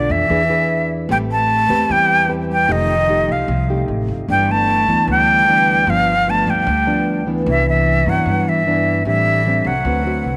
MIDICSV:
0, 0, Header, 1, 5, 480
1, 0, Start_track
1, 0, Key_signature, 1, "major"
1, 0, Tempo, 397878
1, 1320, Time_signature, 4, 2, 24, 8
1, 12507, End_track
2, 0, Start_track
2, 0, Title_t, "Flute"
2, 0, Program_c, 0, 73
2, 0, Note_on_c, 0, 74, 90
2, 137, Note_on_c, 0, 76, 90
2, 155, Note_off_c, 0, 74, 0
2, 1089, Note_off_c, 0, 76, 0
2, 1343, Note_on_c, 0, 79, 103
2, 1415, Note_off_c, 0, 79, 0
2, 1589, Note_on_c, 0, 81, 102
2, 2313, Note_on_c, 0, 79, 107
2, 2331, Note_off_c, 0, 81, 0
2, 2777, Note_off_c, 0, 79, 0
2, 3044, Note_on_c, 0, 79, 87
2, 3279, Note_on_c, 0, 75, 100
2, 3298, Note_off_c, 0, 79, 0
2, 4004, Note_on_c, 0, 77, 78
2, 4022, Note_off_c, 0, 75, 0
2, 4617, Note_off_c, 0, 77, 0
2, 5194, Note_on_c, 0, 79, 100
2, 5445, Note_on_c, 0, 81, 100
2, 5463, Note_off_c, 0, 79, 0
2, 6144, Note_off_c, 0, 81, 0
2, 6160, Note_on_c, 0, 79, 113
2, 7118, Note_on_c, 0, 77, 104
2, 7136, Note_off_c, 0, 79, 0
2, 7600, Note_on_c, 0, 81, 90
2, 7618, Note_off_c, 0, 77, 0
2, 7843, Note_on_c, 0, 79, 91
2, 7861, Note_off_c, 0, 81, 0
2, 8782, Note_off_c, 0, 79, 0
2, 9045, Note_on_c, 0, 76, 92
2, 9248, Note_off_c, 0, 76, 0
2, 9280, Note_on_c, 0, 76, 87
2, 9764, Note_on_c, 0, 78, 82
2, 9782, Note_off_c, 0, 76, 0
2, 10240, Note_on_c, 0, 76, 85
2, 10259, Note_off_c, 0, 78, 0
2, 10940, Note_off_c, 0, 76, 0
2, 10953, Note_on_c, 0, 76, 89
2, 11667, Note_on_c, 0, 78, 80
2, 11685, Note_off_c, 0, 76, 0
2, 12507, Note_off_c, 0, 78, 0
2, 12507, End_track
3, 0, Start_track
3, 0, Title_t, "Nylon-string guitar"
3, 0, Program_c, 1, 24
3, 0, Note_on_c, 1, 47, 53
3, 0, Note_on_c, 1, 57, 52
3, 0, Note_on_c, 1, 62, 56
3, 0, Note_on_c, 1, 65, 59
3, 345, Note_off_c, 1, 47, 0
3, 347, Note_off_c, 1, 57, 0
3, 348, Note_off_c, 1, 62, 0
3, 349, Note_off_c, 1, 65, 0
3, 362, Note_on_c, 1, 52, 55
3, 365, Note_on_c, 1, 62, 54
3, 371, Note_on_c, 1, 68, 51
3, 372, Note_on_c, 1, 71, 58
3, 501, Note_off_c, 1, 62, 0
3, 506, Note_off_c, 1, 68, 0
3, 506, Note_off_c, 1, 71, 0
3, 595, Note_on_c, 1, 62, 60
3, 601, Note_on_c, 1, 68, 55
3, 604, Note_on_c, 1, 71, 61
3, 1281, Note_off_c, 1, 62, 0
3, 1281, Note_off_c, 1, 68, 0
3, 1284, Note_off_c, 1, 71, 0
3, 1298, Note_off_c, 1, 52, 0
3, 1321, Note_on_c, 1, 57, 57
3, 1328, Note_on_c, 1, 67, 51
3, 1331, Note_on_c, 1, 60, 50
3, 1333, Note_on_c, 1, 71, 64
3, 2006, Note_off_c, 1, 60, 0
3, 2007, Note_off_c, 1, 67, 0
3, 2008, Note_off_c, 1, 71, 0
3, 2045, Note_on_c, 1, 60, 54
3, 2051, Note_on_c, 1, 67, 69
3, 2054, Note_on_c, 1, 71, 71
3, 2259, Note_off_c, 1, 57, 0
3, 2288, Note_on_c, 1, 52, 55
3, 2725, Note_off_c, 1, 60, 0
3, 2729, Note_off_c, 1, 67, 0
3, 2729, Note_off_c, 1, 71, 0
3, 2753, Note_on_c, 1, 60, 56
3, 2763, Note_on_c, 1, 67, 49
3, 2767, Note_on_c, 1, 71, 56
3, 3067, Note_off_c, 1, 60, 0
3, 3072, Note_off_c, 1, 67, 0
3, 3073, Note_off_c, 1, 71, 0
3, 3221, Note_off_c, 1, 52, 0
3, 3239, Note_on_c, 1, 57, 47
3, 3241, Note_on_c, 1, 53, 53
3, 3241, Note_on_c, 1, 63, 50
3, 3250, Note_on_c, 1, 67, 54
3, 3549, Note_off_c, 1, 57, 0
3, 3552, Note_off_c, 1, 63, 0
3, 3554, Note_off_c, 1, 67, 0
3, 3725, Note_on_c, 1, 57, 57
3, 3730, Note_on_c, 1, 63, 54
3, 3737, Note_on_c, 1, 67, 56
3, 4178, Note_off_c, 1, 53, 0
3, 4201, Note_off_c, 1, 57, 0
3, 4203, Note_off_c, 1, 63, 0
3, 4205, Note_on_c, 1, 48, 54
3, 4207, Note_off_c, 1, 67, 0
3, 4448, Note_on_c, 1, 57, 50
3, 4457, Note_on_c, 1, 63, 56
3, 4463, Note_on_c, 1, 67, 61
3, 5129, Note_off_c, 1, 57, 0
3, 5131, Note_off_c, 1, 63, 0
3, 5131, Note_off_c, 1, 67, 0
3, 5140, Note_off_c, 1, 48, 0
3, 5169, Note_on_c, 1, 43, 56
3, 5174, Note_on_c, 1, 52, 49
3, 5179, Note_on_c, 1, 59, 47
3, 5182, Note_on_c, 1, 62, 55
3, 5851, Note_off_c, 1, 52, 0
3, 5852, Note_off_c, 1, 59, 0
3, 5854, Note_off_c, 1, 62, 0
3, 5889, Note_on_c, 1, 52, 57
3, 5898, Note_on_c, 1, 59, 61
3, 5898, Note_on_c, 1, 62, 62
3, 6102, Note_off_c, 1, 43, 0
3, 6130, Note_on_c, 1, 50, 58
3, 6568, Note_off_c, 1, 52, 0
3, 6571, Note_off_c, 1, 59, 0
3, 6572, Note_off_c, 1, 62, 0
3, 6606, Note_on_c, 1, 52, 50
3, 6612, Note_on_c, 1, 59, 59
3, 6621, Note_on_c, 1, 62, 57
3, 7046, Note_off_c, 1, 52, 0
3, 7049, Note_off_c, 1, 59, 0
3, 7054, Note_off_c, 1, 62, 0
3, 7062, Note_off_c, 1, 50, 0
3, 7089, Note_on_c, 1, 43, 51
3, 7094, Note_on_c, 1, 53, 56
3, 7098, Note_on_c, 1, 59, 53
3, 7102, Note_on_c, 1, 62, 58
3, 7398, Note_off_c, 1, 53, 0
3, 7399, Note_off_c, 1, 59, 0
3, 7402, Note_off_c, 1, 62, 0
3, 7569, Note_on_c, 1, 53, 58
3, 7572, Note_on_c, 1, 59, 49
3, 7580, Note_on_c, 1, 62, 51
3, 8021, Note_off_c, 1, 43, 0
3, 8044, Note_off_c, 1, 53, 0
3, 8044, Note_off_c, 1, 59, 0
3, 8046, Note_off_c, 1, 62, 0
3, 8048, Note_on_c, 1, 50, 55
3, 8284, Note_on_c, 1, 53, 52
3, 8289, Note_on_c, 1, 59, 59
3, 8292, Note_on_c, 1, 62, 69
3, 8725, Note_off_c, 1, 53, 0
3, 8725, Note_off_c, 1, 59, 0
3, 8728, Note_off_c, 1, 62, 0
3, 8769, Note_on_c, 1, 52, 62
3, 8774, Note_on_c, 1, 59, 65
3, 8778, Note_on_c, 1, 62, 61
3, 8981, Note_off_c, 1, 50, 0
3, 9011, Note_on_c, 1, 48, 52
3, 9686, Note_off_c, 1, 52, 0
3, 9689, Note_off_c, 1, 59, 0
3, 9690, Note_off_c, 1, 62, 0
3, 9739, Note_on_c, 1, 52, 64
3, 9745, Note_on_c, 1, 59, 65
3, 9751, Note_on_c, 1, 62, 67
3, 9941, Note_off_c, 1, 48, 0
3, 9973, Note_on_c, 1, 43, 59
3, 10411, Note_off_c, 1, 59, 0
3, 10412, Note_off_c, 1, 52, 0
3, 10417, Note_off_c, 1, 62, 0
3, 10458, Note_on_c, 1, 52, 58
3, 10463, Note_on_c, 1, 59, 53
3, 10466, Note_on_c, 1, 62, 64
3, 10890, Note_off_c, 1, 52, 0
3, 10893, Note_off_c, 1, 59, 0
3, 10893, Note_off_c, 1, 62, 0
3, 10902, Note_off_c, 1, 43, 0
3, 10938, Note_on_c, 1, 45, 57
3, 10939, Note_on_c, 1, 55, 49
3, 10943, Note_on_c, 1, 60, 57
3, 10948, Note_on_c, 1, 62, 61
3, 11370, Note_off_c, 1, 55, 0
3, 11372, Note_off_c, 1, 60, 0
3, 11373, Note_off_c, 1, 62, 0
3, 11422, Note_on_c, 1, 55, 50
3, 11429, Note_on_c, 1, 62, 57
3, 11430, Note_on_c, 1, 60, 58
3, 11733, Note_off_c, 1, 55, 0
3, 11735, Note_off_c, 1, 60, 0
3, 11736, Note_off_c, 1, 62, 0
3, 11865, Note_off_c, 1, 45, 0
3, 11895, Note_on_c, 1, 50, 53
3, 11901, Note_on_c, 1, 60, 52
3, 11902, Note_on_c, 1, 66, 60
3, 11908, Note_on_c, 1, 71, 61
3, 12090, Note_off_c, 1, 60, 0
3, 12092, Note_off_c, 1, 66, 0
3, 12094, Note_off_c, 1, 71, 0
3, 12137, Note_on_c, 1, 60, 64
3, 12143, Note_on_c, 1, 66, 62
3, 12148, Note_on_c, 1, 71, 61
3, 12507, Note_off_c, 1, 50, 0
3, 12507, Note_off_c, 1, 60, 0
3, 12507, Note_off_c, 1, 66, 0
3, 12507, Note_off_c, 1, 71, 0
3, 12507, End_track
4, 0, Start_track
4, 0, Title_t, "Cello"
4, 0, Program_c, 2, 42
4, 0, Note_on_c, 2, 50, 82
4, 125, Note_on_c, 2, 52, 83
4, 143, Note_off_c, 2, 50, 0
4, 1083, Note_off_c, 2, 52, 0
4, 1339, Note_on_c, 2, 55, 85
4, 1443, Note_off_c, 2, 55, 0
4, 1580, Note_on_c, 2, 57, 91
4, 2285, Note_on_c, 2, 55, 81
4, 2303, Note_off_c, 2, 57, 0
4, 2764, Note_off_c, 2, 55, 0
4, 3004, Note_on_c, 2, 55, 71
4, 3241, Note_on_c, 2, 51, 84
4, 3259, Note_off_c, 2, 55, 0
4, 3974, Note_on_c, 2, 53, 69
4, 3992, Note_off_c, 2, 51, 0
4, 4603, Note_off_c, 2, 53, 0
4, 5168, Note_on_c, 2, 55, 79
4, 5413, Note_on_c, 2, 57, 88
4, 5432, Note_off_c, 2, 55, 0
4, 6128, Note_off_c, 2, 57, 0
4, 6147, Note_on_c, 2, 55, 88
4, 7097, Note_on_c, 2, 53, 76
4, 7116, Note_off_c, 2, 55, 0
4, 7586, Note_on_c, 2, 57, 82
4, 7604, Note_off_c, 2, 53, 0
4, 7815, Note_on_c, 2, 55, 79
4, 7833, Note_off_c, 2, 57, 0
4, 8768, Note_off_c, 2, 55, 0
4, 9027, Note_on_c, 2, 52, 81
4, 9238, Note_off_c, 2, 52, 0
4, 9262, Note_on_c, 2, 52, 77
4, 9737, Note_on_c, 2, 54, 74
4, 9755, Note_off_c, 2, 52, 0
4, 10214, Note_on_c, 2, 52, 76
4, 10232, Note_off_c, 2, 54, 0
4, 10915, Note_off_c, 2, 52, 0
4, 10923, Note_on_c, 2, 52, 78
4, 11651, Note_on_c, 2, 54, 69
4, 11669, Note_off_c, 2, 52, 0
4, 12507, Note_off_c, 2, 54, 0
4, 12507, End_track
5, 0, Start_track
5, 0, Title_t, "Upright bass"
5, 0, Program_c, 3, 32
5, 116, Note_on_c, 3, 41, 82
5, 340, Note_off_c, 3, 41, 0
5, 357, Note_on_c, 3, 40, 87
5, 1271, Note_off_c, 3, 40, 0
5, 1312, Note_on_c, 3, 33, 95
5, 1989, Note_off_c, 3, 33, 0
5, 2036, Note_on_c, 3, 40, 87
5, 2262, Note_off_c, 3, 40, 0
5, 2280, Note_on_c, 3, 40, 90
5, 3193, Note_off_c, 3, 40, 0
5, 3243, Note_on_c, 3, 29, 91
5, 3915, Note_off_c, 3, 29, 0
5, 3961, Note_on_c, 3, 36, 78
5, 4185, Note_off_c, 3, 36, 0
5, 4198, Note_on_c, 3, 36, 92
5, 4647, Note_off_c, 3, 36, 0
5, 4682, Note_on_c, 3, 33, 74
5, 4898, Note_off_c, 3, 33, 0
5, 4923, Note_on_c, 3, 31, 74
5, 5139, Note_off_c, 3, 31, 0
5, 5168, Note_on_c, 3, 31, 82
5, 5837, Note_off_c, 3, 31, 0
5, 5885, Note_on_c, 3, 38, 83
5, 6107, Note_off_c, 3, 38, 0
5, 6122, Note_on_c, 3, 38, 93
5, 7034, Note_off_c, 3, 38, 0
5, 7081, Note_on_c, 3, 31, 95
5, 7753, Note_off_c, 3, 31, 0
5, 7805, Note_on_c, 3, 38, 86
5, 8027, Note_off_c, 3, 38, 0
5, 8042, Note_on_c, 3, 38, 99
5, 8953, Note_off_c, 3, 38, 0
5, 9005, Note_on_c, 3, 36, 99
5, 9674, Note_off_c, 3, 36, 0
5, 9722, Note_on_c, 3, 43, 84
5, 9945, Note_off_c, 3, 43, 0
5, 9961, Note_on_c, 3, 43, 93
5, 10871, Note_off_c, 3, 43, 0
5, 10920, Note_on_c, 3, 33, 85
5, 11590, Note_off_c, 3, 33, 0
5, 11635, Note_on_c, 3, 36, 79
5, 11860, Note_off_c, 3, 36, 0
5, 11878, Note_on_c, 3, 38, 91
5, 12324, Note_off_c, 3, 38, 0
5, 12353, Note_on_c, 3, 36, 72
5, 12507, Note_off_c, 3, 36, 0
5, 12507, End_track
0, 0, End_of_file